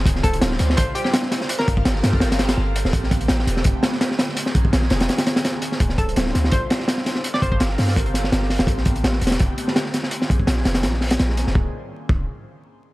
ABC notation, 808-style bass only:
X:1
M:4/4
L:1/16
Q:"Swing 16ths" 1/4=167
K:Dm
V:1 name="808-style bass" clef=bass
D,,,2 D,,,2 D,,,2 D,,2 A,,, z6 z | z2 G,,,2 G,,,2 G,,2 G,,,4 G,,,3 D,,, | A,,,2 A,,,2 A,,,2 E,,,2 E,,, z6 z | z2 B,,,2 B,,,2 F,,,2 z8 |
D,,,2 D,,,2 D,,,2 D,,2 A,,, z6 z | z2 G,,,2 G,,,2 G,,2 G,,,4 G,,,3 D,,, | A,,,2 A,,,2 A,,,2 E,,,2 E,,, z6 z | z2 B,,,2 B,,,2 F,,,2 B,,,4 B,,,3 F,,, |
D,,, z4 z D,,,2 z8 |]